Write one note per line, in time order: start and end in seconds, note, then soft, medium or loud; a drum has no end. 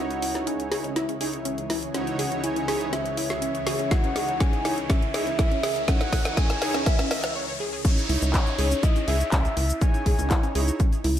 0.00 7.32 C#2 medium
0.00 7.32 C#3 medium
0.00 7.31 E3 medium
0.00 0.69 D#4 medium
0.00 0.69 E4 medium
0.00 3.87 G#4 medium
0.00 0.69 C#5 medium
0.00 7.32 C#5 medium
0.00 0.48 F#5 loud
0.00 riser medium
0.11 closed hi-hat soft
0.22 0.31 E4 medium
0.22 open hi-hat loud
0.35 snare soft
0.35 closed hi-hat soft
0.47 0.53 C#4 medium
0.47 0.98 G#5 loud
0.47 closed hi-hat medium
0.60 closed hi-hat soft
0.72 0.82 D#4 medium
0.72 0.82 E4 medium
0.72 0.78 G#4 loud
0.72 0.82 C#5 medium
0.72 snare soft
0.72 open hi-hat loud
0.84 0.93 C#4 medium
0.84 closed hi-hat soft
0.96 1.05 E4 loud
0.96 1.20 E5 loud
0.96 snare soft
0.96 closed hi-hat medium
1.09 1.17 C#4 medium
1.09 closed hi-hat soft
1.21 1.31 D#4 medium
1.21 1.31 E4 medium
1.21 1.24 G#4 loud
1.21 1.31 C#5 medium
1.21 1.91 E5 loud
1.21 open hi-hat loud
1.33 closed hi-hat soft
1.45 1.51 C#4 medium
1.45 closed hi-hat medium
1.58 closed hi-hat soft
1.70 1.79 E4 medium
1.70 snare medium
1.70 open hi-hat loud
1.83 closed hi-hat soft
1.94 2.00 C#4 medium
1.94 2.65 D#4 medium
1.94 2.65 E4 medium
1.94 2.65 C#5 medium
1.94 2.45 F#5 loud
1.94 snare medium
1.94 closed hi-hat medium
2.07 closed hi-hat soft
2.19 2.25 G#4 loud
2.19 open hi-hat loud
2.32 2.40 C#4 medium
2.32 closed hi-hat soft
2.44 2.53 E4 loud
2.44 2.94 G#5 loud
2.44 closed hi-hat medium
2.56 2.65 C#4 medium
2.56 closed hi-hat soft
2.68 2.85 D#4 medium
2.68 2.85 E4 medium
2.68 2.72 G#4 loud
2.68 2.85 C#5 loud
2.68 snare medium
2.68 open hi-hat loud
2.81 closed hi-hat soft
2.93 2.99 C#4 medium
2.93 3.17 E5 loud
2.93 snare medium
2.93 closed hi-hat medium
3.06 closed hi-hat soft
3.17 3.26 E4 medium
3.17 3.93 E5 loud
3.17 open hi-hat loud
3.30 snare medium
3.30 closed hi-hat soft
3.42 3.48 C#4 medium
3.42 closed hi-hat medium
3.55 closed hi-hat soft
3.67 3.73 G#4 loud
3.67 snare medium
3.67 open hi-hat loud
3.79 3.88 C#4 medium
3.79 closed hi-hat soft
3.91 4.62 D#4 medium
3.91 4.00 E4 loud
3.91 4.62 E4 medium
3.91 7.32 A#4 medium
3.91 4.62 C#5 medium
3.91 4.42 F#5 loud
3.91 kick loud
3.91 snare medium
3.91 closed hi-hat medium
4.04 4.12 C#4 medium
4.04 closed hi-hat soft
4.16 4.19 G#4 loud
4.16 snare medium
4.16 open hi-hat loud
4.29 closed hi-hat soft
4.40 4.46 C#4 medium
4.40 4.91 G#5 loud
4.40 kick loud
4.40 snare medium
4.40 closed hi-hat medium
4.53 closed hi-hat soft
4.65 4.75 D#4 medium
4.65 4.74 E4 medium
4.65 4.75 E4 medium
4.65 4.75 C#5 loud
4.65 snare medium
4.65 open hi-hat loud
4.78 closed hi-hat soft
4.90 4.96 C#4 medium
4.90 5.14 E5 loud
4.90 kick loud
4.90 snare medium
4.90 closed hi-hat medium
5.02 closed hi-hat soft
5.14 5.25 D#4 medium
5.14 5.25 E4 medium
5.14 5.20 G#4 loud
5.14 5.25 C#5 medium
5.14 5.84 E5 loud
5.14 snare medium
5.14 open hi-hat loud
5.27 5.35 C#4 medium
5.27 closed hi-hat soft
5.39 5.48 E4 loud
5.39 kick loud
5.39 snare medium
5.39 closed hi-hat medium
5.51 5.60 C#4 medium
5.51 closed hi-hat soft
5.63 5.67 G#4 loud
5.63 snare medium
5.63 open hi-hat loud
5.76 closed hi-hat soft
5.88 5.94 C#4 medium
5.88 6.59 D#4 medium
5.88 6.59 E4 medium
5.88 6.59 C#5 medium
5.88 6.39 F#5 loud
5.88 kick loud
5.88 snare medium
5.88 closed hi-hat medium
6.01 snare medium
6.01 closed hi-hat soft
6.13 6.21 E4 medium
6.13 kick medium
6.13 snare medium
6.13 open hi-hat loud
6.25 snare medium
6.25 closed hi-hat soft
6.37 6.43 C#4 medium
6.37 6.88 G#5 loud
6.37 kick loud
6.37 snare loud
6.37 closed hi-hat medium
6.50 snare medium
6.50 closed hi-hat soft
6.62 6.78 D#4 medium
6.62 6.78 E4 medium
6.62 6.68 G#4 loud
6.62 6.78 C#5 loud
6.62 snare loud
6.62 open hi-hat loud
6.74 6.83 C#4 medium
6.74 snare medium
6.74 closed hi-hat soft
6.86 6.95 E4 loud
6.86 7.10 E5 medium
6.86 kick loud
6.86 snare loud
6.86 closed hi-hat medium
6.99 7.07 C#4 medium
6.99 snare medium
6.99 closed hi-hat soft
7.11 7.17 D#5 medium
7.11 7.34 E5 medium
7.11 snare loud
7.11 open hi-hat loud
7.24 snare medium
7.24 closed hi-hat soft
7.35 7.41 C#5 medium
7.48 7.54 C#5 medium
7.60 7.69 G#4 medium
7.73 7.81 G#4 medium
7.85 7.91 C#4 medium
7.85 8.56 D#4 medium
7.85 8.56 E4 medium
7.85 8.56 C#5 medium
7.85 kick loud
7.85 closed hi-hat medium
7.85 crash loud
7.85 downlifter medium
7.85 shaker medium
7.97 closed hi-hat soft
7.97 shaker soft
8.09 8.17 C#2 loud
8.09 8.18 E4 medium
8.09 open hi-hat loud
8.22 8.37 C#2 loud
8.22 closed hi-hat soft
8.22 shaker medium
8.34 8.40 C#4 medium
8.34 8.85 C#5 medium
8.34 kick loud
8.34 clap loud
8.34 closed hi-hat medium
8.34 shaker medium
8.47 closed hi-hat soft
8.47 shaker soft
8.58 8.74 C#2 loud
8.58 8.69 D#4 medium
8.58 8.69 E4 medium
8.58 8.64 G#4 loud
8.58 8.69 C#5 medium
8.58 open hi-hat loud
8.71 8.80 C#4 medium
8.71 closed hi-hat soft
8.71 shaker medium
8.83 8.92 E4 loud
8.83 9.09 D#5 loud
8.83 kick loud
8.83 closed hi-hat loud
8.83 shaker medium
8.96 9.04 C#4 medium
8.96 closed hi-hat soft
8.96 shaker soft
9.08 9.23 C#2 loud
9.08 9.18 D#4 medium
9.08 9.18 E4 medium
9.08 9.11 G#4 loud
9.08 9.18 C#5 medium
9.08 9.81 E5 loud
9.08 open hi-hat loud
9.20 closed hi-hat soft
9.20 shaker medium
9.32 9.48 C#2 loud
9.32 9.38 C#4 medium
9.32 kick loud
9.32 clap loud
9.32 closed hi-hat loud
9.32 shaker medium
9.45 closed hi-hat soft
9.45 shaker soft
9.57 9.72 C#2 medium
9.57 9.66 E4 medium
9.57 open hi-hat loud
9.70 shaker medium
9.81 9.87 C#4 medium
9.81 10.52 D#4 medium
9.81 10.52 E4 medium
9.81 10.52 C#5 medium
9.81 10.51 G#5 loud
9.81 kick loud
9.81 closed hi-hat medium
9.81 shaker medium
9.94 closed hi-hat soft
9.94 shaker soft
10.06 10.14 C#2 medium
10.06 10.12 G#4 loud
10.06 kick medium
10.06 open hi-hat loud
10.19 10.34 C#2 medium
10.19 10.27 C#4 medium
10.19 closed hi-hat soft
10.19 shaker medium
10.30 10.39 E4 loud
10.30 kick loud
10.30 clap loud
10.30 closed hi-hat medium
10.30 shaker medium
10.43 10.52 C#4 medium
10.43 closed hi-hat soft
10.43 shaker soft
10.55 10.71 C#2 loud
10.55 10.72 D#4 medium
10.55 10.72 E4 medium
10.55 10.59 G#4 loud
10.55 10.72 C#5 loud
10.55 open hi-hat loud
10.68 closed hi-hat soft
10.68 shaker medium
10.80 10.86 C#4 medium
10.80 kick loud
10.80 closed hi-hat medium
10.80 shaker medium
10.93 closed hi-hat soft
10.93 shaker soft
11.04 11.20 C#2 loud
11.04 11.13 E4 medium
11.04 open hi-hat loud